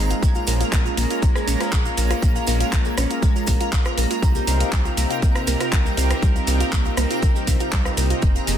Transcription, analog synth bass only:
Already playing: G#1
0.23 A#1
0.47 A#1
0.72 A#1
0.97 A#1
1.22 A#1
1.48 A#1
1.72 A#1
1.98 A#1
2.23 A#1
2.48 A#1
2.72 A#1
2.98 A#1
3.22 A#1
3.47 A#1
3.72 A#1
3.98 A#1
4.22 C2
4.47 C2
4.72 C2
4.97 C2
5.22 C2
5.47 C2
5.72 C2
5.98 C2
6.22 C2
6.47 C2
6.73 C2
6.97 C2
7.23 C2
7.47 C2
7.72 C2
7.97 C2
8.22 F1
8.47 F1

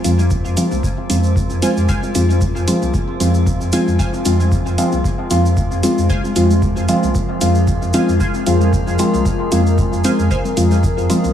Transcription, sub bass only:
0.04 F2
0.45 F2
0.72 C2
1.10 F2
1.50 F2
1.77 F2
2.15 F2
2.56 F2
2.82 C2
3.20 F2
3.61 F2
3.87 F2
4.25 F2
4.66 F2
4.93 C2
5.31 F2
5.71 F2
5.98 F2
6.36 F2
6.77 F2
7.03 C2
7.41 F2
7.82 F2
8.08 F2
8.47 F2
8.87 F2
9.14 C2
9.52 F2
9.93 F2
10.19 F2
10.57 F2
10.98 F2
11.24 C2

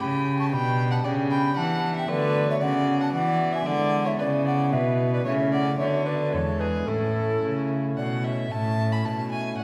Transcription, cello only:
0.00 C#3
0.53 B2
1.06 C#3
1.58 E3
2.10 D3
2.62 C#3
3.14 E3
3.66 D3
4.20 C#3
4.73 B2
5.26 C#3
5.80 D3
6.34 E2
6.88 A2
7.43 C#3
7.97 B2
8.52 A2
9.05 B2
9.59 A2

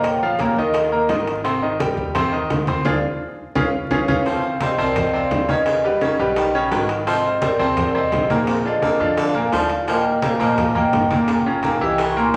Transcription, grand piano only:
Already playing: A#3 A#4 A#5
0.23 F3 F4 F5
0.40 A#2 A#3 A#4
0.58 D#3 D#4 D#5
0.92 A#3 A#4 A#5
1.10 D#3 D#4 D#5
1.44 C3 C4 C5
1.62 D#3 D#4 D#5
1.80 G3 G4 G5
2.15 C3 C4 C5
2.32 D#3 D#4 D#5
2.68 C4 C5 C6
2.85 D4 F4 G#4
3.56 C#4 F4 G#4
3.91 C#4 F4 G#4
4.08 C#4 F4 G#4
4.26 C3 C4 C5
4.61 C3 C4 C5
4.78 C3 C4 C5
5.13 C3 C4 C5
5.48 C#3 C#4 C#5
5.84 G3 G4 B4
6.01 C#3 C#4 C#5
6.19 G3 G4 B4
6.55 C#3 C#4 C#5
6.71 D#3 B4 G5
7.07 C3 C4 C5
7.41 C3 C4 C5
7.59 C3 C4 C5
7.95 C3 C4 C5
8.30 A#2 A#3 A#4
8.65 D3 D4 F4
8.82 A#2 A#3 A#4
9.00 D3 D4 F4
9.34 A#2 A#3 A#4
9.52 D3 D4 F4
9.88 A#2 A#3 A#4
10.22 A#2 A#3 A#4
10.39 A#2 A#3 A#4
10.75 A#2 A#3 A#4
11.10 A#2 A#3 A#4
11.46 C#3 C#4 F4
11.63 A#2 A#3 A#4
11.81 E3 E4 G4
12.16 A#2 A#3 A#4

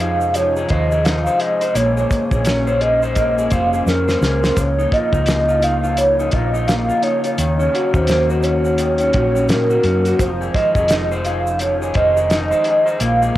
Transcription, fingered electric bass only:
Already playing: F2
0.70 D#2
1.75 A#1
2.31 A#1
3.52 F1
3.86 F2
4.21 C#2
4.57 C#2
5.13 C#2
6.33 A#1
7.38 D#2
7.94 D#2
9.14 A#1
9.49 A#2
9.84 F#2
10.19 F1
10.75 F1
11.95 F1
13.01 A#1

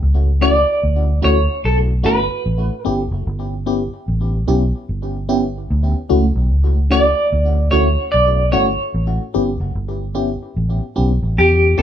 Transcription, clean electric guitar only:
0.42 D5
1.24 C#5
1.65 A4
2.06 B4
2.86 A4
6.92 D5
7.71 C#5
8.12 D5
8.52 C#5
11.38 G4
11.79 A4

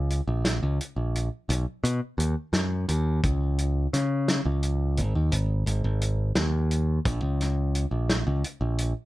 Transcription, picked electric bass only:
Already playing: C#2
0.28 A#1
0.63 C#2
0.96 A#1
1.49 B1
1.84 B2
2.18 D#2
2.53 F#2
2.89 D#2
3.24 C#2
3.93 C#3
4.45 C#2
4.98 G#1
5.15 D#2
5.32 G#1
5.66 G#1
5.84 G#1
6.36 D#2
7.05 A#1
7.22 C#2
7.91 A#1
8.27 C#2
8.61 A#1

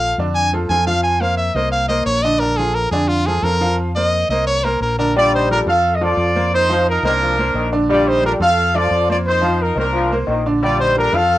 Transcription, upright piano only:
Already playing: F3 F4 A4
0.19 D3 D4 D5
0.53 F3 F4 A4
0.71 F3 F4 A4
0.87 F3 F4 F5
1.20 A#3 A#4 C5
1.56 A#3 A#4 C5
1.89 A#3 A#4 C5
2.24 D3 D4 D5
2.42 D3 D4 D5
2.59 F3 F4 A4
2.93 D3 D4 D5
3.27 F3 F4 A4
3.44 F3 F4 A4
3.61 F3 F4 F5
3.96 A#3 A#4 C5
4.31 A#3 A#4 C5
4.65 A#3 A#4 C5
4.99 D3 D4 D5
5.16 D3 D4 D5
5.50 F3 F4 A4
5.67 F3 F4 A4
6.01 F3 F4 A4
6.35 A#3 A#4 C5
6.70 F3 F4 F5
7.04 A#3 A#4 C5
7.39 A#3 A#4 C5
7.72 D3 D4 D5
7.89 D3 D4 D5
8.23 F3 F4 A4
8.41 F3 F4 A4
8.75 F3 F4 A4
9.10 A#3 A#4 C5
9.43 F3 F4 F5
9.77 A#3 A#4 C5
10.12 A#3 A#4 C5
10.46 D3 D4 D5
10.62 D3 D4 D5
10.96 F3 F4 A4
11.14 F3 F4 A4

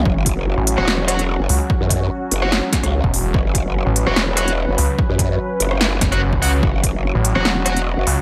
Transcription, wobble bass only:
0.05 F#1
0.37 F#1
0.78 E1
1.40 F#1
1.81 F#2
2.32 F#1
2.83 C#2
3.34 F#1
3.66 F#1
4.07 E1
4.68 F#1
5.09 F#2
5.60 F#1
6.63 F#1
6.94 F#1
7.36 E1
7.97 F#1

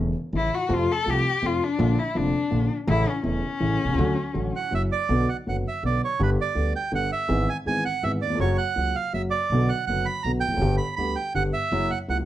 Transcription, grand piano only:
Already playing: E1 E2 C#3 E3 A3 E4
0.33 A1 A2 C#3 E3 A3 E4
0.69 F2 C3 F3 A3 F4
1.05 C2 C3 F3 A3 F4
1.42 F2 C3 F3 A3 F4
1.78 A#1 A#2 D3 F3 A#3 F4
2.15 F1 F2 D3 F3 A#3 F4
2.51 A#1 A#2 D3 F3 A#3 F4
2.87 A1 A2 C#3 E3 A3 E4
3.23 E1 E2 C#3 E3 A3 E4
3.60 A1 A2 C#3 E3 A3 E4
3.84 B1
3.88 C2
3.93 C#2
3.99 D2 D3 F#3 A3 F#4
4.34 A1 A2 D3 F#3 A3 F#4
4.71 F#2 C#3 F#3 A#3 E4
5.09 B1 B2 D3 F#3 B3 F#4
5.46 F#1 F#2 D3 F#3 B3 F#4
5.83 B1 B2 D3 F#3 B3 F#4
6.20 G1 G2 D3 G3 B3 G4
6.55 D2 D3 G3 B3 G4
6.92 G1 G2 D3 G3 B3 G4
7.28 G#1 G#2 E3 G#3 B3 G#4
7.66 G#1 G#2 E3 G#3 B3 G#4
8.03 G#1 G#2 E3 G#3 B3 G#4
8.25 D#2
8.30 E2
8.35 F2
8.39 F#2 C#3 F#3 A#3 F#4
8.76 C#2 C#3 F#3 A#3 F#4
9.13 F#2 C#3 F#3 A#3 F#4
9.52 B1 B2 D3 F#3 B3 F#4
9.89 F#1 F#2 D3 F#3 B3 F#4
10.25 B1 B2 D3 F#3 B3 F#4
10.48 E2
10.54 F2 F#2
10.62 G1 G2 D3 G3 B3 G4
10.98 D2 D3 G3 B3 G4
11.35 G1 G2 D3 G3 B3 G4
11.72 F#2 C#3 F#3 A#3 E4
12.08 C#2 C#3 F#3 A#3 E4

